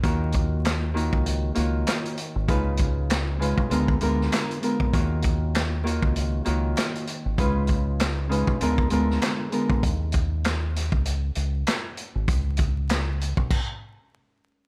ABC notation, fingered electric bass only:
X:1
M:4/4
L:1/16
Q:"Swing 16ths" 1/4=98
K:Ebm
V:1 name="Fingered electric bass" clef=bass
E,,6- E,, D,,3 D,,2 z3 A,,, | D,,6- D,, C,, =D,,2 D,,2 z3 B,,, | E,,6- E,, D,,3 D,,2 z3 A,,, | D,,6- D,, C,, =D,,2 D,,2 z3 B,,, |
E,,6- E,, D,,3 D,,2 z3 A,,, | ^C,,6- C,, =B,,, z8 |]